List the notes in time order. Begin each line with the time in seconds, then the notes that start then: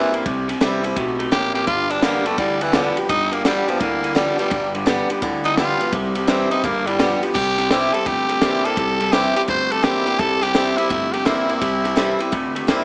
Already playing: G2 C3 E3 G3 A#3 C4 E4
0.13 C3 A#3 C4 E4, ride
0.26 C2 C3 G3, kick, ride
0.48 C3 G3, snare, ride
0.60 C2 C3 E3 G3 C4 E4, snare, ride
0.83 C3 G3 C4 E4, ride
0.96 B1 B2 C3 A3, kick, ride
1.19 C3 A3, ride
1.32 A1 A2 C3 A#3 G4, kick, snare, ride
1.55 C3 A#3 G4, ride
1.67 G1 G2 D3 F4, kick, ride
1.90 G2 D3 D4, ride
2.02 G2 D3 G3 A#3 B3 G4, snare, ride
2.25 G2 D3 A3 B3 G4, ride
2.38 D2 G2 D3 E3 G3, kick, ride
2.61 G2 E3, ride
2.73 G2 D3 F3 G3 B3 G4, kick, snare, ride
2.97 G2 F3 B3 G4, ride
3.09 G1 G2 D3 D#4, kick, ride
3.32 G2 D3 A#3, ride
3.45 G2 D3 G3 B3 G4, snare, ride
3.67 G2 D3 F3 B3 G4, ride
3.80 D2 G2 D3 E3 A#3, kick, ride
4.03 G2 E3, ride
4.15 G2 D3 F3 G3 B3 G4, kick, snare, ride
4.38 G2 F3 G3 B3 G4, ride
4.51 G1 G2 D3, kick, ride
4.75 G2 D3, ride
4.86 G2 D3 G3 B3 G4, snare, ride
5.09 G2 D3 B3 G4, ride
5.22 D2 G2 D3 E3, kick, ride
5.45 G2 E3 D#4, ride
5.57 G2 D3 F3 G3 B3 F4 G4, kick, snare, ride
5.80 G2 F3 B3 G4, ride
5.92 C2 C3 G3, kick, ride
6.15 C3 G3, ride
6.27 C3 E3 G3 C4 E4, snare, ride
6.51 C3 G3 C4 D#4 E4, ride
6.64 G1 G2 D3 A#3, kick, ride
6.87 G2 E3 G3, ride
6.99 G2 D3 F3 G3 B3 G4, kick, snare, ride
7.22 G2 F3 B3 G4, ride
7.34 C2 C3 G3 G4, kick, crash
7.58 C3 G3, snare, ride
7.70 C3 E3 G3 C4 E4, snare, ride
7.93 C3 G3 C4 E4 A4, ride
8.06 G1 G2 C3 A3 G4, kick, ride
8.29 C3 A3, ride
8.42 C3 E3 G3 A#3 C4 E4, kick, snare, ride
8.64 C3 A#3 C4 E4 A4, ride
8.77 C2 C3 G3, kick, ride
9.00 C3 G3, ride
9.12 C3 E3 G3 C4 E4 G4, snare, ride
9.35 C3 G3 C4 E4 G4, ride
9.48 G1 G2 C3 A3 C5, kick, ride
9.71 C3 A3 A4, ride
9.82 C3 E3 G3 A#3 C4 E4 G4, kick, snare, ride
10.06 C3 A#3 C4 E4, ride
10.19 C2 C3 G3 A4, kick, ride
10.43 C3 G3 G4, snare, ride
10.54 C3 E3 G3 C4 E4, snare, ride
10.77 C3 G3 C4 E4, ride
10.90 G1 G2 C3 A3, kick, ride
11.13 C3 A3 G4, ride
11.25 C3 E3 G3 A#3 C4 E4, kick, snare, ride
11.49 C3 A#3 C4 E4, ride
11.61 C2 C3 G3, kick, ride
11.84 C3 G3, snare, ride
11.96 C3 E3 G3 C4 E4, snare, ride
12.19 C3 G3 C4 E4, ride
12.32 D2 G2 C3 A3, kick, ride
12.55 C3 A3, ride
12.67 E2 C3 E3 G3 A#3 C4 E4, kick, snare, ride